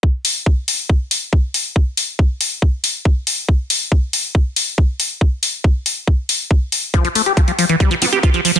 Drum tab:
HH |--o---o---o---o-|--o---o---o---o-|--o---o---o---o-|--o---o---o---o-|
BD |o---o---o---o---|o---o---o---o---|o---o---o---o---|o---o---o---o---|

HH |xxoxxxoxxxoxxxox|
BD |o---o---o---o---|